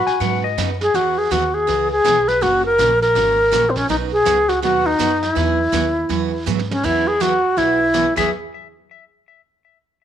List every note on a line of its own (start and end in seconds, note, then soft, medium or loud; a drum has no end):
0.00 0.44 F#4 loud
0.07 0.20 G#5 medium
0.07 muted upright bass stroke soft
0.07 snare soft
0.20 0.56 G#2 medium
0.20 0.42 B2 medium
0.20 0.42 C#3 medium
0.20 0.42 F#3 medium
0.20 0.42 B3 medium
0.20 0.42 D#4 medium
0.20 0.43 B4 medium
0.20 0.43 F#5 medium
0.20 brush sweep medium
0.20 snare soft
0.44 0.69 D#5 medium
0.57 0.93 F#2 medium
0.57 0.69 B2 medium
0.57 0.69 C#3 medium
0.57 0.69 F#3 medium
0.57 0.69 B3 medium
0.57 0.69 D#4 medium
0.57 0.70 B4 medium
0.57 snare medium
0.57 hi-hat pedal medium
0.81 0.97 G#4 loud
0.81 snare soft
0.94 1.30 E2 medium
0.94 1.16 E3 medium
0.94 1.16 B3 medium
0.94 1.16 E4 medium
0.94 1.20 F#4 medium
0.94 1.16 G#4 medium
0.94 brush sweep soft
0.94 snare soft
1.18 1.33 G#4 medium
1.31 1.67 D#2 loud
1.31 1.42 E3 medium
1.31 1.43 B3 medium
1.31 1.43 E4 medium
1.31 1.56 F#4 medium
1.31 1.43 G#4 medium
1.31 snare medium
1.31 hi-hat pedal medium
1.54 1.91 G#4 medium
1.67 2.04 C#2 medium
1.67 1.89 E3 medium
1.67 1.89 B3 medium
1.67 1.90 E4 medium
1.67 1.90 G#4 medium
1.67 brush sweep soft
1.67 snare soft
1.92 2.30 G#4 loud
2.04 2.41 B1 medium
2.04 2.16 E3 medium
2.04 2.16 B3 medium
2.04 2.16 E4 medium
2.04 2.17 G#4 medium
2.04 snare medium
2.04 hi-hat pedal medium
2.28 2.44 B4 loud
2.28 snare soft
2.41 2.77 F#1 medium
2.41 2.63 C#3 medium
2.41 2.63 E3 medium
2.41 2.63 A#3 medium
2.41 2.63 C#4 medium
2.41 2.65 F#4 loud
2.41 2.63 F#4 medium
2.41 brush sweep soft
2.41 snare soft
2.65 2.99 A#4 loud
2.78 3.14 A#1 loud
2.78 2.90 C#3 medium
2.78 2.90 E3 medium
2.78 2.90 A#3 medium
2.78 2.90 C#4 medium
2.78 2.90 F#4 medium
2.78 snare medium
2.78 hi-hat pedal medium
3.02 3.71 A#4 loud
3.02 snare soft
3.15 3.51 G#1 medium
3.15 3.37 C#3 medium
3.15 3.37 E3 medium
3.15 3.37 A#3 medium
3.15 3.37 C#4 medium
3.15 3.37 F#4 medium
3.15 brush sweep medium
3.15 snare medium
3.52 3.88 A#1 medium
3.52 3.63 C#3 medium
3.52 3.63 E3 medium
3.52 3.63 A#3 medium
3.52 3.64 C#4 medium
3.52 3.64 F#4 medium
3.52 snare medium
3.52 hi-hat pedal medium
3.70 3.78 C4 medium
3.76 3.89 C#4 loud
3.76 kick medium
3.76 snare soft
3.89 4.25 B1 medium
3.89 4.10 B2 medium
3.89 4.10 F#3 medium
3.89 4.11 B3 medium
3.89 3.95 D#4 loud
3.89 4.11 D#4 medium
3.89 4.11 F#4 medium
3.89 brush sweep soft
3.89 snare soft
4.12 4.50 G#4 loud
4.25 4.62 C#2 loud
4.25 4.37 B2 medium
4.25 4.37 F#3 medium
4.25 4.37 B3 medium
4.25 4.37 D#4 medium
4.25 4.37 F#4 medium
4.25 snare medium
4.25 hi-hat pedal medium
4.49 4.62 F#4 medium
4.49 snare soft
4.62 4.98 D#2 medium
4.62 4.84 B2 medium
4.62 4.84 F#3 medium
4.62 4.84 B3 medium
4.62 4.84 D#4 medium
4.62 4.88 F#4 loud
4.62 4.84 F#4 medium
4.62 brush sweep medium
4.62 snare soft
4.86 5.24 D#4 loud
4.99 5.35 F#2 medium
4.99 5.10 B2 medium
4.99 5.11 F#3 medium
4.99 5.11 B3 medium
4.99 5.11 D#4 medium
4.99 5.11 F#4 medium
4.99 snare medium
4.99 hi-hat pedal medium
5.23 6.47 E4 medium
5.23 snare soft
5.35 5.72 E2 medium
5.35 5.57 E3 medium
5.35 5.57 F#3 medium
5.35 5.57 B3 medium
5.35 5.58 E4 medium
5.35 5.58 G#4 medium
5.35 brush sweep soft
5.35 snare soft
5.72 6.09 D#2 medium
5.72 5.84 E3 medium
5.72 5.84 F#3 medium
5.72 5.84 B3 medium
5.72 5.84 E4 medium
5.72 5.85 G#4 medium
5.72 snare medium
5.72 hi-hat pedal medium
6.09 6.45 E2 medium
6.09 6.31 E3 soft
6.09 6.31 F#3 medium
6.09 6.31 B3 medium
6.09 6.31 E4 medium
6.09 6.31 G#4 medium
6.09 brush sweep medium
6.09 snare soft
6.46 6.83 G#2 medium
6.46 6.58 E3 medium
6.46 6.58 F#3 medium
6.46 6.58 B3 medium
6.46 6.58 E4 medium
6.46 6.58 G#4 medium
6.46 hi-hat pedal medium
6.46 high tom medium
6.59 high tom medium
6.71 6.86 C#4 medium
6.71 high tom loud
6.83 7.42 E2 medium
6.83 7.05 E3 medium
6.83 7.05 F#3 medium
6.83 7.05 B3 medium
6.83 7.05 E4 medium
6.83 7.09 E4 medium
6.83 7.05 G#4 medium
6.83 brush sweep soft
6.83 kick medium
6.83 snare soft
6.83 crash medium
7.07 7.23 G#4 medium
7.20 7.31 E3 medium
7.20 7.32 F#3 medium
7.20 7.32 B3 medium
7.20 7.32 E4 medium
7.20 7.59 F#4 loud
7.20 7.32 G#4 medium
7.20 snare medium
7.20 hi-hat pedal medium
7.57 8.05 B1 medium
7.57 7.78 E3 medium
7.57 7.78 F#3 medium
7.57 7.79 B3 medium
7.57 8.16 E4 medium
7.57 7.79 E4 medium
7.57 7.79 G#4 medium
7.57 brush sweep soft
7.57 snare soft
7.94 8.05 E3 medium
7.94 8.05 F#3 medium
7.94 8.05 B3 medium
7.94 8.06 E4 medium
7.94 8.06 G#4 medium
7.94 snare medium
7.94 hi-hat pedal medium
8.16 8.30 E2 medium
8.16 8.28 E3 medium
8.16 8.28 F#3 medium
8.16 8.28 B3 medium
8.16 8.28 E4 medium
8.16 8.30 G#4 medium
8.16 8.29 G#4 medium
8.16 8.30 E5 medium
8.16 kick loud
8.16 snare medium
8.16 crash medium